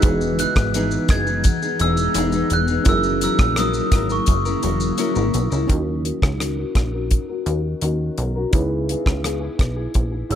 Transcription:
Already playing: ambient pad E3 G#3, glockenspiel F#6
0.00 analog synth bass E1, nylon-string guitar E3 B3, ambient pad B3 D#4, tine electric piano D#4 F#4 G#4, kick, closed hi-hat, shaker
0.04 nylon-string guitar D#4 G#4, tine electric piano B4
0.21 shaker
0.39 nylon-string guitar E3 B3 D#4 G#4, glockenspiel F#6, closed hi-hat, shaker
0.56 analog synth bass G#1, kick, cross-stick, shaker
0.74 nylon-string guitar E3 B3 D#4 G#4, closed hi-hat, shaker
0.91 shaker
1.09 analog synth bass F#1, nylon-string guitar E3 B3 D#4 G#4, glockenspiel G#6, kick, cross-stick, closed hi-hat, shaker
1.27 nylon-string guitar B3 D#4 G#4, shaker
1.44 kick, closed hi-hat, shaker
1.62 nylon-string guitar B3 D#4 G#4, shaker
1.79 analog synth bass E1, nylon-string guitar E3 B3 D#4 G#4, glockenspiel E6, closed hi-hat, shaker
1.97 shaker
2.15 analog synth bass E1, nylon-string guitar E3 B3 D#4 G#4, closed hi-hat, shaker
2.32 nylon-string guitar B3 D#4 G#4, shaker
2.50 analog synth bass E1, glockenspiel F#6, closed hi-hat, shaker
2.68 nylon-string guitar B3 D#4 G#4, shaker
2.84 analog synth bass F#1, ambient pad C#3 F#3 A#3 E4, nylon-string guitar F#3 C#4 E4, tine electric piano C#4 E4 G#4, kick, closed hi-hat, shaker
2.88 nylon-string guitar A#4, tine electric piano A#4, glockenspiel E6
3.03 shaker
3.21 nylon-string guitar F#3 C#4 E4 A#4, glockenspiel E6, closed hi-hat, shaker
3.39 analog synth bass A#1, glockenspiel E6, kick, cross-stick, shaker
3.56 nylon-string guitar F#3 C#4 E4 A#4, glockenspiel D#6, cross-stick, closed hi-hat, shaker
3.74 shaker
3.92 analog synth bass G#1, nylon-string guitar F#3 C#4 E4 A#4, kick, cross-stick, closed hi-hat, shaker
4.10 nylon-string guitar C#4 E4 A#4, glockenspiel C#6, shaker
4.26 analog synth bass F#1, kick, closed hi-hat, shaker
4.45 nylon-string guitar C#4 E4 A#4, shaker
4.62 analog synth bass E1, nylon-string guitar F#3 C#4 E4 A#4, closed hi-hat, shaker
4.80 shaker
4.98 nylon-string guitar F#3 C#4 E4 A#4, closed hi-hat, shaker
5.15 analog synth bass G#1, nylon-string guitar C#4 E4 A#4, shaker
5.34 analog synth bass B1, closed hi-hat, shaker
5.50 analog synth bass C#2, nylon-string guitar C#4 E4 A#4, shaker
5.67 analog synth bass D#2, nylon-string guitar D#3 C#4 F#4 A#4, tine electric piano C#4 D#4 F#4, kick, closed hi-hat
5.73 tine electric piano A#4
6.03 nylon-string guitar D#3 C#4 F#4 A#4, closed hi-hat
6.22 analog synth bass C#2, kick, cross-stick
6.39 nylon-string guitar D#3 C#4 F#4 A#4, glockenspiel F#6, cross-stick, closed hi-hat
6.57 nylon-string guitar C#4 F#4 A#4
6.75 analog synth bass A#1, kick, cross-stick, closed hi-hat
6.93 nylon-string guitar C#4 F#4 A#4
7.11 kick, closed hi-hat
7.29 nylon-string guitar C#4 F#4 A#4
7.46 analog synth bass D#2, nylon-string guitar D#3 C#4 F#4 A#4, closed hi-hat
7.82 analog synth bass D#2, nylon-string guitar D#3 C#4 F#4 A#4, closed hi-hat
8.18 analog synth bass B1, nylon-string guitar D#3 C#4 F#4 A#4, closed hi-hat
8.36 nylon-string guitar C#4 F#4 A#4
8.51 analog synth bass C#2, nylon-string guitar C#3 B3 E4 G#4, tine electric piano D#4 E4 G#4, kick, closed hi-hat
8.56 tine electric piano B4
8.89 nylon-string guitar C#3 B3 E4 G#4, closed hi-hat
9.06 analog synth bass C#2, kick, cross-stick
9.24 nylon-string guitar C#3 B3 E4 G#4, cross-stick, closed hi-hat
9.41 nylon-string guitar B3 E4 G#4
9.59 analog synth bass B1, kick, cross-stick, closed hi-hat
9.76 nylon-string guitar B3 E4 G#4
9.94 analog synth bass A#1, kick, closed hi-hat
10.11 nylon-string guitar B3 E4 G#4
10.29 analog synth bass G#1, nylon-string guitar C#3 B3 E4, tine electric piano D#4 E4 G#4 C#5, glockenspiel E6, closed hi-hat

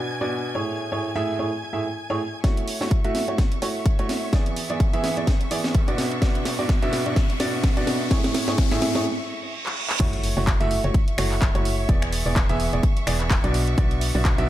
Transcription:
Already playing: grand piano B2 B3 D4 F#4 D5, violin section G#5 G#6
0.21 grand piano B2 B3 D4 F#4 D5
0.55 grand piano A2 A3 E4 G#4 C#5
0.92 grand piano A2 A3 E4 G#4 C#5
1.16 grand piano A2 A3 E4 G#4 E5
1.39 grand piano A2 A3 E4 G#4 C#5
1.73 grand piano A2 A3 E4 G#4 E5
2.10 grand piano A2 A3 E4 G#4 C#5
2.44 grand piano A3 E4 F#4 C#5, violin section E5 C#6, kick, snare, closed hi-hat, riser
2.57 closed hi-hat
2.68 open hi-hat
2.81 grand piano A3 E4 F#4 C#5, snare
2.91 kick, closed hi-hat
3.04 grand piano A3 E4 F#4 E5, closed hi-hat
3.15 snare, open hi-hat
3.28 grand piano A3 E4 F#4 C#5, closed hi-hat
3.38 kick, snare, closed hi-hat
3.52 closed hi-hat
3.62 grand piano A3 E4 F#4 C#5, open hi-hat
3.86 kick, closed hi-hat
3.99 grand piano A3 E4 F#4 C#5, closed hi-hat
4.09 snare, open hi-hat
4.33 grand piano E3 B3 E4 G#4 D5, kick, snare, closed hi-hat
4.46 closed hi-hat
4.56 open hi-hat
4.70 grand piano E3 B3 E4 G#4 D5, closed hi-hat
4.80 kick, closed hi-hat
4.93 grand piano E3 B3 E4 G#4 E5, closed hi-hat
5.04 snare, open hi-hat
5.17 grand piano E3 B3 E4 G#4 D5, closed hi-hat
5.27 kick, snare, closed hi-hat
5.41 closed hi-hat
5.51 grand piano E3 B3 E4 G#4 D5, open hi-hat
5.64 snare
5.75 kick, closed hi-hat
5.88 grand piano B2 B3 D4 F#4 D5, closed hi-hat
5.98 snare, open hi-hat
6.12 closed hi-hat
6.22 grand piano B2 B3 D4 F#4 D5, kick, snare, closed hi-hat
6.35 closed hi-hat
6.45 snare, open hi-hat
6.59 grand piano B2 B3 D4 F#4 D5
6.69 kick, snare, closed hi-hat
6.82 grand piano B2 B3 D4 F#4 E5, closed hi-hat
6.93 snare, open hi-hat
7.06 grand piano B2 B3 D4 F#4 D5, closed hi-hat
7.16 kick, snare, closed hi-hat
7.30 closed hi-hat
7.40 grand piano B2 B3 D4 F#4 D5, snare, open hi-hat
7.64 kick, snare, closed hi-hat
7.77 grand piano B2 B3 D4 F#4 D5, closed hi-hat
7.87 snare, open hi-hat
8.11 grand piano A2 A3 E4 G#4 C#5, kick, snare, closed hi-hat
8.24 snare, closed hi-hat
8.34 snare, open hi-hat
8.48 grand piano A2 A3 E4 G#4 C#5, snare, closed hi-hat
8.58 kick, snare, closed hi-hat
8.71 grand piano A2 A3 E4 G#4 E5, snare, closed hi-hat
8.82 snare, open hi-hat
8.95 grand piano A2 A3 E4 G#4 C#5, snare, closed hi-hat
9.05 reverse cymbal
9.66 clap
9.90 clap
10.00 fm bass F#1, grand piano A3 E4 F#4 C#5, violin section E5 C#6, kick, closed hi-hat, crash, impact
10.13 closed hi-hat
10.24 open hi-hat
10.37 fm bass F#1, grand piano A3 E4 F#4 C#5
10.47 kick, clap, closed hi-hat
10.61 fm bass F#1, grand piano A3 E4 F#4 E5, closed hi-hat
10.71 open hi-hat
10.84 fm bass F#1, grand piano A3 E4 F#4 C#5, closed hi-hat
10.94 kick, closed hi-hat
11.08 closed hi-hat
11.18 fm bass F#1, grand piano A3 E4 F#4 C#5, finger snap, open hi-hat
11.31 clap
11.42 kick, clap, closed hi-hat
11.55 fm bass F#1, grand piano A3 E4 F#4 C#5, closed hi-hat
11.65 open hi-hat
11.89 fm bass E1, grand piano E3 B3 E4 G#4 D5, kick, closed hi-hat
12.02 finger snap, closed hi-hat
12.13 open hi-hat
12.26 fm bass E1, grand piano E3 B3 E4 G#4 D5
12.36 kick, clap, closed hi-hat
12.49 fm bass E1, grand piano E3 B3 E4 G#4 E5, closed hi-hat
12.60 open hi-hat
12.73 fm bass E1, grand piano E3 B3 E4 G#4 D5, closed hi-hat
12.83 kick, closed hi-hat
12.97 closed hi-hat
13.07 fm bass E1, grand piano E3 B3 E4 G#4 D5, finger snap, open hi-hat
13.20 clap, closed hi-hat
13.31 kick, clap, closed hi-hat
13.44 fm bass B1, grand piano B2 B3 D4 F#4 D5, closed hi-hat
13.54 open hi-hat
13.67 closed hi-hat
13.78 fm bass B1, grand piano B2 B3 D4 F#4 D5, kick, closed hi-hat
13.91 closed hi-hat
14.01 open hi-hat
14.15 fm bass B1, grand piano B2 B3 D4 F#4 D5
14.25 kick, clap, closed hi-hat
14.38 fm bass B1, grand piano B2 B3 D4 F#4 E5, closed hi-hat

